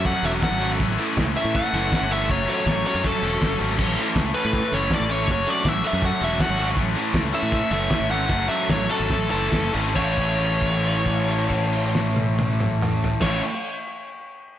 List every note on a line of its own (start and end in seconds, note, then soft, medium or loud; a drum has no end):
0.00 0.12 F#2 loud
0.00 0.12 F#3 medium
0.00 0.79 F#3 medium
0.00 2.26 A3 medium
0.00 0.11 C#4 medium
0.00 3.75 C#4 medium
0.00 0.11 F#4 medium
0.00 0.11 A4 medium
0.00 0.77 A4 medium
0.00 0.77 C#5 loud
0.05 0.41 F#3 medium
0.05 0.27 A3 loud
0.05 0.24 C#4 loud
0.05 0.25 F#5 loud
0.05 0.24 F#6 loud
0.05 kick loud
0.23 0.40 E1 loud
0.23 0.49 F#3 medium
0.23 0.45 C#4 medium
0.23 0.49 C#4 medium
0.23 0.48 F#4 medium
0.23 0.48 A4 loud
0.23 0.30 E5 loud
0.23 0.33 E6 medium
0.23 snare soft
0.23 open hi-hat medium
0.27 0.44 A3 medium
0.43 0.79 F#3 medium
0.43 0.65 A3 medium
0.43 0.62 C#4 medium
0.43 0.69 F#5 loud
0.43 0.70 F#6 medium
0.43 kick loud
0.43 snare loud
0.51 0.80 G#1 medium
0.61 0.81 F#3 medium
0.61 0.83 C#4 medium
0.61 0.81 C#4 medium
0.61 0.80 F#4 medium
0.61 0.80 A4 medium
0.61 open hi-hat loud
0.65 0.82 A3 medium
0.80 0.97 A1 loud
0.80 2.28 E3 medium
0.80 1.54 E3 medium
0.80 1.39 A3 loud
0.80 1.36 C#4 loud
0.80 3.76 A4 medium
0.80 6.74 C#5 loud
0.80 kick loud
0.90 snare soft
0.98 1.24 A3 loud
0.98 1.23 C#4 medium
0.98 1.23 E4 loud
0.98 1.23 A4 loud
0.98 open hi-hat medium
1.17 1.34 C#2 medium
1.17 kick loud
1.17 snare loud
1.36 1.61 A3 medium
1.36 1.57 A3 medium
1.36 1.58 C#4 medium
1.36 1.61 C#4 medium
1.36 1.61 E4 medium
1.36 1.61 A4 medium
1.36 1.56 E5 loud
1.36 1.53 E6 medium
1.36 open hi-hat medium
1.45 1.62 A2 loud
1.55 1.91 E3 loud
1.55 1.77 A3 loud
1.55 1.73 C#4 loud
1.55 2.13 F#5 loud
1.55 2.08 F#6 loud
1.55 kick loud
1.73 1.90 F#1 loud
1.73 1.99 A3 medium
1.73 1.94 A3 medium
1.73 1.95 C#4 medium
1.73 1.99 C#4 medium
1.73 1.99 E4 medium
1.73 1.98 A4 loud
1.73 snare soft
1.73 open hi-hat medium
1.92 2.29 E3 medium
1.92 2.14 A3 medium
1.92 2.11 C#4 medium
1.92 kick loud
1.92 snare loud
2.01 2.30 G1 medium
2.10 2.30 A3 medium
2.10 2.30 C#4 medium
2.10 2.32 C#4 medium
2.10 2.30 E4 medium
2.10 2.30 A4 medium
2.10 2.31 E5 loud
2.10 2.29 E6 medium
2.10 open hi-hat loud
2.15 2.31 A3 medium
2.29 2.46 F#1 loud
2.29 3.77 F#3 medium
2.29 3.03 F#3 loud
2.29 5.26 A3 medium
2.29 2.88 A3 loud
2.29 2.85 C#4 loud
2.29 2.49 C#5 loud
2.29 2.48 C#6 medium
2.29 kick loud
2.48 2.73 F#3 medium
2.48 2.73 C#4 medium
2.48 2.73 F#4 medium
2.48 2.72 A4 medium
2.48 2.86 C#5 medium
2.48 2.83 C#6 medium
2.48 open hi-hat medium
2.66 2.83 A1 loud
2.66 kick loud
2.66 snare loud
2.86 3.11 F#3 medium
2.86 3.05 A3 medium
2.86 3.07 C#4 medium
2.86 3.11 C#4 medium
2.86 3.10 F#4 medium
2.86 3.10 A4 medium
2.86 3.06 C#5 medium
2.86 3.04 C#6 medium
2.86 open hi-hat loud
2.95 3.11 F#2 loud
3.04 3.41 F#3 medium
3.04 3.26 A3 medium
3.04 3.23 C#4 loud
3.04 3.57 A4 medium
3.04 3.58 A5 medium
3.04 kick loud
3.23 3.39 E1 medium
3.23 3.48 F#3 medium
3.23 3.43 A3 medium
3.23 3.45 C#4 medium
3.23 3.48 C#4 medium
3.23 3.47 F#4 medium
3.23 3.47 A4 medium
3.23 open hi-hat medium
3.42 3.59 F#1 medium
3.42 3.77 F#3 medium
3.42 3.62 A3 medium
3.42 3.60 C#4 medium
3.42 kick loud
3.42 snare loud
3.60 3.79 G#1 medium
3.60 3.80 F#3 medium
3.60 3.79 A3 medium
3.60 3.80 C#4 medium
3.60 3.79 F#4 medium
3.60 3.79 A4 medium
3.60 open hi-hat loud
3.78 3.96 A1 loud
3.78 4.52 E3 loud
3.78 5.28 E3 medium
3.78 4.37 A3 loud
3.78 9.92 C#4 medium
3.78 4.34 C#4 loud
3.78 9.08 A4 medium
3.78 kick loud
3.78 crash loud
3.89 snare soft
3.97 4.23 A3 medium
3.97 4.22 C#4 medium
3.97 4.22 E4 loud
3.97 4.22 A4 loud
3.97 open hi-hat medium
4.16 4.33 C#2 loud
4.16 kick loud
4.16 snare loud
4.34 4.60 A3 medium
4.34 4.55 A3 medium
4.34 4.56 C#4 medium
4.34 4.59 C#4 medium
4.34 4.59 E4 medium
4.34 4.59 A4 medium
4.34 4.73 B4 medium
4.34 4.71 B5 medium
4.34 open hi-hat medium
4.45 4.61 A2 loud
4.53 4.90 E3 medium
4.53 4.76 A3 medium
4.53 4.73 C#4 loud
4.53 kick loud
4.72 4.89 F#1 medium
4.72 4.97 A3 medium
4.72 4.93 A3 medium
4.72 4.97 C#4 medium
4.72 4.94 C#4 medium
4.72 4.96 E4 medium
4.72 4.96 A4 loud
4.72 4.94 C#5 medium
4.72 4.91 C#6 medium
4.72 snare soft
4.72 open hi-hat medium
4.91 5.28 E3 medium
4.91 5.12 A3 medium
4.91 5.09 C#4 loud
4.91 5.12 D5 medium
4.91 5.12 D6 medium
4.91 kick loud
4.91 snare loud
5.00 5.27 A1 medium
5.09 5.29 A3 medium
5.09 5.27 A3 medium
5.09 5.29 C#4 medium
5.09 5.28 E4 medium
5.09 5.28 A4 medium
5.09 5.29 C#5 medium
5.09 open hi-hat loud
5.14 5.31 C#6 medium
5.27 5.44 F#1 loud
5.27 6.77 F#3 medium
5.27 6.02 A3 loud
5.27 9.92 A3 medium
5.27 5.86 C#4 loud
5.27 5.82 F#4 loud
5.27 kick loud
5.32 5.50 C#5 loud
5.32 5.48 C#6 medium
5.47 5.72 F#3 medium
5.47 5.71 C#4 medium
5.47 5.71 F#4 medium
5.47 5.71 A4 loud
5.47 5.68 D5 medium
5.47 5.67 D6 medium
5.47 open hi-hat medium
5.65 5.82 A1 medium
5.65 5.86 E5 loud
5.65 kick loud
5.65 snare loud
5.69 5.86 E6 medium
5.83 6.09 F#3 medium
5.83 6.08 C#4 medium
5.83 6.04 C#4 medium
5.83 6.08 F#4 medium
5.83 6.04 F#4 medium
5.83 6.08 A4 loud
5.83 6.05 E5 loud
5.83 open hi-hat loud
5.88 6.03 E6 medium
5.93 6.10 F#2 loud
6.02 6.38 A3 medium
6.02 6.24 C#4 loud
6.02 6.20 F#4 loud
6.02 6.24 F#5 loud
6.02 6.21 F#6 loud
6.02 kick loud
6.21 6.38 E1 loud
6.21 6.47 F#3 medium
6.21 6.46 C#4 medium
6.21 6.40 C#4 medium
6.21 6.40 F#4 medium
6.21 6.46 F#4 loud
6.21 6.46 A4 medium
6.21 6.41 E5 loud
6.21 6.41 E6 medium
6.21 open hi-hat medium
6.39 6.78 A3 medium
6.39 6.61 C#4 medium
6.39 6.57 F#4 loud
6.39 6.67 F#5 loud
6.39 6.66 F#6 medium
6.39 kick loud
6.39 snare loud
6.49 6.77 G#1 medium
6.58 6.78 F#3 medium
6.58 6.78 C#4 medium
6.58 6.79 C#4 medium
6.58 6.76 F#4 medium
6.58 6.78 F#4 medium
6.58 6.78 A4 medium
6.58 open hi-hat medium
6.76 6.94 A1 loud
6.76 7.51 E3 loud
6.76 8.29 E3 medium
6.76 7.36 A3 loud
6.76 7.32 C#4 loud
6.76 8.29 C#5 medium
6.76 kick loud
6.95 7.21 A3 medium
6.95 7.21 C#4 medium
6.95 7.21 E4 loud
6.95 7.20 A4 loud
6.95 open hi-hat medium
7.14 7.31 C#2 loud
7.14 kick loud
7.14 snare loud
7.33 7.59 A3 medium
7.33 7.53 A3 medium
7.33 7.55 C#4 medium
7.33 7.59 C#4 medium
7.33 7.59 E4 medium
7.33 7.58 A4 medium
7.33 7.70 E5 loud
7.33 7.69 E6 medium
7.33 open hi-hat medium
7.43 7.60 A2 loud
7.52 7.90 E3 loud
7.52 7.74 A3 loud
7.52 7.70 C#4 loud
7.52 kick loud
7.71 7.89 F#1 loud
7.71 7.98 A3 medium
7.71 7.92 A3 medium
7.71 7.93 C#4 medium
7.71 7.97 C#4 medium
7.71 7.97 E4 medium
7.71 7.97 A4 medium
7.71 8.08 E5 loud
7.71 8.08 E6 medium
7.71 snare soft
7.71 open hi-hat medium
7.91 8.29 E3 medium
7.91 8.13 A3 medium
7.91 8.10 C#4 loud
7.91 kick loud
7.91 snare loud
8.00 8.29 G#1 medium
8.10 8.30 A3 medium
8.10 8.31 A3 medium
8.10 8.32 C#4 medium
8.10 8.30 C#4 medium
8.10 8.30 E4 medium
8.10 8.30 A4 medium
8.10 8.49 F#5 loud
8.10 8.47 F#6 medium
8.10 open hi-hat medium
8.29 8.47 F#1 loud
8.29 9.09 F#3 medium
8.29 9.09 F#3 loud
8.29 8.91 A3 loud
8.29 8.88 C#4 loud
8.29 9.94 C#5 medium
8.29 kick loud
8.49 8.76 F#3 medium
8.49 8.76 C#4 loud
8.49 8.76 F#4 medium
8.49 8.76 A4 loud
8.49 8.70 E5 medium
8.49 8.69 E6 medium
8.49 open hi-hat medium
8.69 8.88 A1 loud
8.69 8.89 C#5 loud
8.69 8.89 C#6 medium
8.69 kick loud
8.69 snare loud
8.89 9.11 F#3 medium
8.89 9.10 A3 medium
8.89 9.09 C#4 medium
8.89 9.11 C#4 medium
8.89 9.10 F#4 medium
8.89 9.10 A4 medium
8.89 9.29 A4 loud
8.89 9.30 A5 medium
8.89 open hi-hat loud
9.00 9.09 G#1 loud
9.10 9.29 A1 loud
9.10 9.50 E3 loud
9.10 9.95 E3 medium
9.10 9.31 A3 loud
9.10 9.29 C#4 loud
9.10 9.95 A4 medium
9.10 kick loud
9.30 9.50 F#1 medium
9.30 9.59 A3 medium
9.30 9.51 A3 medium
9.30 9.53 C#4 medium
9.30 9.59 C#4 medium
9.30 9.59 E4 loud
9.30 9.58 A4 medium
9.30 9.71 A4 medium
9.30 9.71 A5 medium
9.30 open hi-hat medium
9.51 9.72 F#1 medium
9.51 9.93 E3 medium
9.51 9.74 A3 medium
9.51 9.72 C#4 medium
9.51 kick loud
9.51 snare loud
9.73 9.94 G#1 loud
9.73 9.95 A3 medium
9.73 9.94 C#4 medium
9.73 9.96 C#4 medium
9.73 9.96 E4 medium
9.73 9.95 A4 medium
9.73 open hi-hat loud
9.94 13.12 A1 loud
9.94 13.21 A2 medium
9.94 13.21 E3 medium
9.94 13.22 E3 medium
9.94 13.13 E3 medium
9.94 13.23 A3 loud
9.94 13.13 A3 medium
9.94 13.13 C#4 medium
9.94 13.24 C#4 loud
9.94 13.13 A4 medium
9.94 13.12 C#5 medium
9.94 13.13 C#5 medium
9.94 13.13 C#6 medium
9.94 kick loud
9.94 crash loud
9.98 13.25 C#4 loud
9.98 13.25 E4 loud
10.18 kick medium
10.18 crash soft
10.40 crash soft
10.62 kick medium
10.62 crash soft
10.84 crash medium
11.06 kick medium
11.06 crash medium
11.28 crash medium
11.50 kick medium
11.50 crash medium
11.73 crash medium
11.95 snare loud
12.16 high tom loud
12.39 high tom loud
12.60 mid tom loud
12.82 mid tom loud
13.04 floor tom loud
13.21 13.40 A1 loud
13.21 13.41 A2 medium
13.21 13.42 E3 medium
13.21 13.42 E3 loud
13.21 13.42 A3 loud
13.21 13.43 A3 loud
13.21 13.43 C#4 loud
13.21 13.43 E4 loud
13.21 13.40 C#5 loud
13.21 13.41 C#6 medium
13.21 kick loud
13.21 snare loud
13.21 crash loud
13.25 13.43 C#4 loud